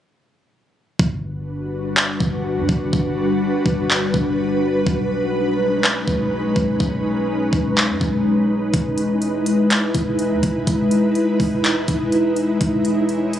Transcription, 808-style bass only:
0, 0, Header, 1, 2, 480
1, 0, Start_track
1, 0, Tempo, 483871
1, 986, Time_signature, 4, 2, 24, 8
1, 13288, End_track
2, 0, Start_track
2, 0, Title_t, "808-style bass"
2, 0, Program_c, 0, 38
2, 986, Note_on_c, 0, 31, 111
2, 2147, Note_off_c, 0, 31, 0
2, 2186, Note_on_c, 0, 31, 108
2, 2547, Note_on_c, 0, 43, 95
2, 2562, Note_off_c, 0, 31, 0
2, 2661, Note_off_c, 0, 43, 0
2, 2667, Note_on_c, 0, 31, 101
2, 2897, Note_off_c, 0, 31, 0
2, 2907, Note_on_c, 0, 31, 116
2, 3368, Note_off_c, 0, 31, 0
2, 3627, Note_on_c, 0, 31, 101
2, 4088, Note_off_c, 0, 31, 0
2, 4106, Note_on_c, 0, 31, 102
2, 4798, Note_off_c, 0, 31, 0
2, 4827, Note_on_c, 0, 35, 114
2, 5987, Note_off_c, 0, 35, 0
2, 6027, Note_on_c, 0, 35, 104
2, 6487, Note_off_c, 0, 35, 0
2, 6508, Note_on_c, 0, 35, 96
2, 6737, Note_off_c, 0, 35, 0
2, 6747, Note_on_c, 0, 35, 113
2, 7438, Note_off_c, 0, 35, 0
2, 7467, Note_on_c, 0, 35, 109
2, 7826, Note_on_c, 0, 42, 95
2, 7841, Note_off_c, 0, 35, 0
2, 7940, Note_off_c, 0, 42, 0
2, 7946, Note_on_c, 0, 35, 107
2, 8638, Note_off_c, 0, 35, 0
2, 8667, Note_on_c, 0, 28, 113
2, 9827, Note_off_c, 0, 28, 0
2, 9867, Note_on_c, 0, 28, 106
2, 10226, Note_on_c, 0, 40, 100
2, 10241, Note_off_c, 0, 28, 0
2, 10340, Note_off_c, 0, 40, 0
2, 10347, Note_on_c, 0, 28, 96
2, 10577, Note_off_c, 0, 28, 0
2, 10587, Note_on_c, 0, 28, 110
2, 11047, Note_off_c, 0, 28, 0
2, 11307, Note_on_c, 0, 28, 103
2, 11768, Note_off_c, 0, 28, 0
2, 11787, Note_on_c, 0, 28, 101
2, 12478, Note_off_c, 0, 28, 0
2, 12507, Note_on_c, 0, 28, 113
2, 13288, Note_off_c, 0, 28, 0
2, 13288, End_track
0, 0, End_of_file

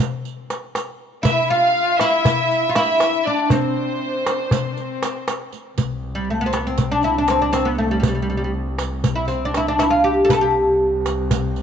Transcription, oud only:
0, 0, Header, 1, 2, 480
1, 0, Start_track
1, 0, Tempo, 502934
1, 1194, Time_signature, 9, 3, 24, 8
1, 11095, End_track
2, 0, Start_track
2, 0, Title_t, "Oud"
2, 0, Program_c, 0, 24
2, 1174, Note_on_c, 0, 64, 107
2, 1431, Note_off_c, 0, 64, 0
2, 1435, Note_on_c, 0, 65, 92
2, 1911, Note_off_c, 0, 65, 0
2, 1915, Note_on_c, 0, 64, 104
2, 2568, Note_off_c, 0, 64, 0
2, 2571, Note_on_c, 0, 65, 70
2, 2628, Note_off_c, 0, 65, 0
2, 2632, Note_on_c, 0, 64, 105
2, 3117, Note_off_c, 0, 64, 0
2, 3121, Note_on_c, 0, 62, 78
2, 3357, Note_on_c, 0, 60, 87
2, 3362, Note_off_c, 0, 62, 0
2, 4993, Note_off_c, 0, 60, 0
2, 5870, Note_on_c, 0, 55, 72
2, 6012, Note_off_c, 0, 55, 0
2, 6016, Note_on_c, 0, 57, 69
2, 6110, Note_off_c, 0, 57, 0
2, 6118, Note_on_c, 0, 59, 83
2, 6166, Note_on_c, 0, 60, 69
2, 6174, Note_off_c, 0, 59, 0
2, 6226, Note_off_c, 0, 60, 0
2, 6237, Note_on_c, 0, 59, 72
2, 6355, Note_off_c, 0, 59, 0
2, 6363, Note_on_c, 0, 60, 74
2, 6596, Note_off_c, 0, 60, 0
2, 6600, Note_on_c, 0, 62, 91
2, 6716, Note_off_c, 0, 62, 0
2, 6720, Note_on_c, 0, 64, 85
2, 6851, Note_off_c, 0, 64, 0
2, 6855, Note_on_c, 0, 62, 80
2, 6963, Note_off_c, 0, 62, 0
2, 6967, Note_on_c, 0, 60, 88
2, 7062, Note_off_c, 0, 60, 0
2, 7078, Note_on_c, 0, 62, 80
2, 7171, Note_off_c, 0, 62, 0
2, 7183, Note_on_c, 0, 60, 89
2, 7303, Note_on_c, 0, 59, 80
2, 7316, Note_off_c, 0, 60, 0
2, 7423, Note_off_c, 0, 59, 0
2, 7429, Note_on_c, 0, 57, 78
2, 7542, Note_off_c, 0, 57, 0
2, 7550, Note_on_c, 0, 55, 67
2, 7615, Note_off_c, 0, 55, 0
2, 7632, Note_on_c, 0, 55, 58
2, 7692, Note_off_c, 0, 55, 0
2, 7710, Note_on_c, 0, 55, 60
2, 7764, Note_off_c, 0, 55, 0
2, 7776, Note_on_c, 0, 55, 51
2, 7835, Note_off_c, 0, 55, 0
2, 7849, Note_on_c, 0, 55, 58
2, 7907, Note_off_c, 0, 55, 0
2, 7919, Note_on_c, 0, 55, 50
2, 7978, Note_off_c, 0, 55, 0
2, 7992, Note_on_c, 0, 55, 51
2, 8045, Note_off_c, 0, 55, 0
2, 8056, Note_on_c, 0, 55, 45
2, 8118, Note_off_c, 0, 55, 0
2, 8738, Note_on_c, 0, 64, 74
2, 8851, Note_off_c, 0, 64, 0
2, 8855, Note_on_c, 0, 60, 78
2, 9018, Note_off_c, 0, 60, 0
2, 9021, Note_on_c, 0, 62, 75
2, 9132, Note_off_c, 0, 62, 0
2, 9135, Note_on_c, 0, 64, 86
2, 9238, Note_off_c, 0, 64, 0
2, 9242, Note_on_c, 0, 62, 88
2, 9344, Note_off_c, 0, 62, 0
2, 9348, Note_on_c, 0, 64, 89
2, 9449, Note_off_c, 0, 64, 0
2, 9453, Note_on_c, 0, 65, 85
2, 9579, Note_off_c, 0, 65, 0
2, 9583, Note_on_c, 0, 67, 89
2, 9775, Note_off_c, 0, 67, 0
2, 9779, Note_on_c, 0, 69, 98
2, 9822, Note_off_c, 0, 69, 0
2, 9833, Note_on_c, 0, 71, 79
2, 9859, Note_on_c, 0, 69, 90
2, 9872, Note_off_c, 0, 71, 0
2, 9934, Note_off_c, 0, 69, 0
2, 9938, Note_on_c, 0, 67, 91
2, 11033, Note_off_c, 0, 67, 0
2, 11095, End_track
0, 0, End_of_file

